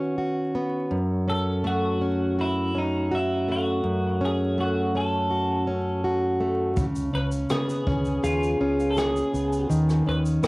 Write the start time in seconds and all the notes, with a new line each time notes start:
Already playing: D#3 B3 C#4 F#4
0.18 F#4
0.55 B3
0.91 F#2
1.28 C#4 A4
1.64 A3 F#4
2.01 C#4
2.39 E4 F#4
2.75 C#4 D#4
3.11 E4 F#4
3.48 A3 F#4
3.84 F#2
4.21 C#4
4.25 G#4
4.58 A3 F#4
4.95 C#4 A4
5.31 F#4
5.67 C#4
6.04 F#4
6.40 A3
6.76 C#2 C#3, kick, shaker
6.96 shaker
7.13 C#2 C#4 B4
7.32 shaker
7.50 C#3 B3 G#4, cross-stick, shaker
7.69 shaker
7.87 C#2 C#4, kick
8.05 shaker
8.23 D#2 F4 G#4, shaker
8.43 shaker
8.60 C#2 C#4
8.80 shaker
8.91 A4
8.97 G#4, cross-stick, shaker
9.16 shaker
9.33 C#2 B3, shaker
9.53 shaker
9.70 D#2 D#3, shaker
9.89 cross-stick, shaker
10.06 D#2 C#4 B4
10.26 shaker
10.43 D#3 B3, cross-stick, shaker